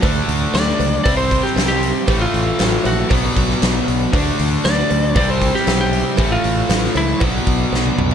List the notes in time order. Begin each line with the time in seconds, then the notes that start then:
0.01 D2 D3 A3 D4 F#4 D5, kick, open hi-hat, cowbell
0.28 D2, open hi-hat
0.54 D2 D5, snare, open hi-hat, cowbell
0.69 snare
0.80 C#2, open hi-hat, cowbell
1.03 C2 C3 G3 C4 E4 C5 D5, kick, open hi-hat, cowbell
1.17 C5
1.31 kick, open hi-hat
1.43 G4, snare
1.56 C2, snare, open hi-hat, cowbell
1.68 G4
1.83 open hi-hat
2.06 A1 A2 E3 A3 C#5 E5, kick, open hi-hat, cowbell
2.21 F4
2.34 A1, open hi-hat
2.59 A1, snare, open hi-hat, cowbell
2.84 A#1 F#4, open hi-hat, cowbell
3.09 B1 B2 F#3 B3 F#4 D5, kick, open hi-hat, cowbell
3.36 B1, kick, open hi-hat
3.50 snare
3.62 B1, snare, open hi-hat, cowbell
3.88 B1, open hi-hat
4.12 D2 D3 A3 D4 F#4 D5, kick, open hi-hat, cowbell
4.39 D2, open hi-hat
4.64 D2 D5, snare, open hi-hat, cowbell
4.79 snare
4.90 D2, open hi-hat, cowbell
5.14 C2 C3 G3 C4 E4 C5 D5, kick, open hi-hat, cowbell
5.30 C5
5.42 kick, open hi-hat
5.55 G4, snare
5.67 B1, snare, open hi-hat, cowbell
5.81 G4
5.93 open hi-hat
6.17 A1 A2 E3 A3 C#5 E5, kick, open hi-hat, cowbell
6.32 F4
6.44 A1, open hi-hat
6.69 A1, snare, open hi-hat, cowbell
6.84 snare
6.95 C#2 E4, open hi-hat, cowbell
7.19 B1 B2 F#3 B3 F#4 D5, kick, open hi-hat, cowbell
7.47 B1, kick, open hi-hat
7.72 B1, snare, cowbell
7.86 high tom
7.98 B1, mid tom
8.11 floor tom